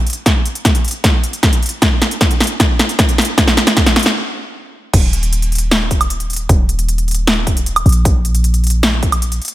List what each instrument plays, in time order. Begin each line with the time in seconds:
0.07 closed hi-hat
0.10 closed hi-hat
0.13 closed hi-hat
0.26 kick, snare, closed hi-hat
0.46 closed hi-hat
0.55 closed hi-hat
0.65 kick, snare, closed hi-hat
0.75 closed hi-hat
0.85 closed hi-hat
0.88 closed hi-hat
0.91 closed hi-hat
1.04 kick, snare, closed hi-hat
1.24 closed hi-hat
1.33 closed hi-hat
1.43 kick, snare, closed hi-hat
1.53 closed hi-hat
1.63 closed hi-hat
1.66 closed hi-hat
1.69 closed hi-hat
1.82 kick, snare, closed hi-hat
2.02 snare, closed hi-hat
2.11 closed hi-hat
2.21 kick, snare, closed hi-hat
2.31 closed hi-hat
2.40 snare, closed hi-hat
2.44 closed hi-hat
2.47 closed hi-hat
2.60 kick, snare, closed hi-hat
2.79 snare, closed hi-hat
2.89 closed hi-hat
2.99 kick, snare, closed hi-hat
3.09 closed hi-hat
3.18 snare, closed hi-hat
3.22 closed hi-hat
3.25 closed hi-hat
3.38 kick, snare, closed hi-hat
3.48 snare
3.57 snare, closed hi-hat
3.67 snare, closed hi-hat
3.77 kick, snare, closed hi-hat
3.86 snare, closed hi-hat
3.96 snare, closed hi-hat
3.99 closed hi-hat
4.03 snare, closed hi-hat
4.93 808-style bass D#1, kick, closed hi-hat, crash
5.13 closed hi-hat
5.23 closed hi-hat
5.33 closed hi-hat
5.42 closed hi-hat
5.52 closed hi-hat
5.55 closed hi-hat
5.58 closed hi-hat
5.71 snare, closed hi-hat
5.91 kick, closed hi-hat
6.01 closed hi-hat, high woodblock
6.10 closed hi-hat
6.20 closed hi-hat
6.30 closed hi-hat
6.33 closed hi-hat
6.36 closed hi-hat
6.49 808-style bass D#1, kick, closed hi-hat
6.69 closed hi-hat
6.79 closed hi-hat
6.89 closed hi-hat
6.98 closed hi-hat
7.08 closed hi-hat
7.11 closed hi-hat
7.15 closed hi-hat
7.27 snare, closed hi-hat
7.47 kick, closed hi-hat
7.57 closed hi-hat
7.66 closed hi-hat
7.76 closed hi-hat, high woodblock
7.86 808-style bass A#1, closed hi-hat
7.89 closed hi-hat
7.92 closed hi-hat
8.05 kick, closed hi-hat
8.25 closed hi-hat
8.35 closed hi-hat
8.44 closed hi-hat
8.54 closed hi-hat
8.64 closed hi-hat
8.67 closed hi-hat
8.70 closed hi-hat
8.83 snare, closed hi-hat
9.03 kick, closed hi-hat
9.12 closed hi-hat, high woodblock
9.22 closed hi-hat
9.32 closed hi-hat
9.42 closed hi-hat
9.45 closed hi-hat
9.48 closed hi-hat